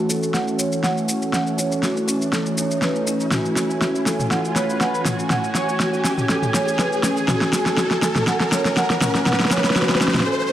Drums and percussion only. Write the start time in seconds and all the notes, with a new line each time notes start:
0.10 shaker
0.23 shaker
0.34 snare, shaker
0.48 shaker
0.59 shaker
0.72 shaker
0.84 snare, shaker
0.98 shaker
1.09 shaker
1.22 shaker
1.33 snare, shaker
1.47 shaker
1.59 shaker
1.72 shaker
1.83 snare, shaker
1.97 shaker
2.08 shaker
2.22 shaker
2.33 snare, shaker
2.46 shaker
2.58 shaker
2.71 shaker
2.82 snare, shaker
2.96 shaker
3.07 shaker
3.20 shaker
3.31 snare, mid tom, shaker
3.45 shaker
3.56 snare, shaker
3.70 shaker
3.82 snare, shaker
3.95 shaker
4.06 snare, shaker
4.20 mid tom, shaker
4.31 snare, shaker
4.45 shaker
4.56 snare, shaker
4.70 shaker
4.81 snare, shaker
4.95 shaker
5.05 snare, mid tom, shaker
5.19 shaker
5.30 snare, mid tom, shaker
5.44 shaker
5.55 snare, shaker
5.69 shaker
5.80 snare, shaker
5.94 shaker
6.05 snare, shaker
6.18 mid tom, shaker
6.29 snare, shaker
6.43 mid tom, shaker
6.54 snare, shaker
6.68 shaker
6.79 snare, shaker
6.92 shaker
7.03 snare, shaker
7.17 shaker
7.28 snare, mid tom, shaker
7.41 snare, shaker
7.53 snare, shaker
7.66 snare, shaker
7.77 snare, shaker
7.91 snare, shaker
8.02 snare, shaker
8.16 snare, mid tom, shaker
8.27 snare, shaker
8.40 snare, shaker
8.52 snare, shaker
8.65 snare, shaker
8.77 snare, shaker
8.90 snare, shaker
9.01 snare, mid tom, shaker
9.15 snare, shaker
9.26 snare, mid tom, shaker
9.33 snare
9.40 snare, shaker
9.45 snare
9.51 snare, shaker
9.58 snare
9.64 snare, shaker
9.70 snare
9.76 snare, shaker
9.82 snare
9.89 snare, shaker
9.95 snare
10.01 snare, shaker
10.08 snare
10.14 snare, mid tom, shaker
10.20 snare